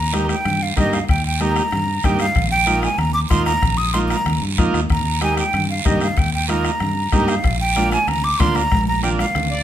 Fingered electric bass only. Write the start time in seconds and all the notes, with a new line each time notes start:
Already playing: D#2
0.45 G2
0.77 G2
1.09 D#2
1.73 G2
2.04 G2
2.36 A#1
2.98 D#2
3.31 D#2
3.62 A#1
4.26 D#2
4.42 G2
4.58 F2
4.74 D#2
4.90 D#2
5.54 G2
5.86 G2
6.17 D#2
6.81 G2
7.12 G2
7.44 A#1
8.07 D2
8.40 D2
8.72 A#1
9.35 D2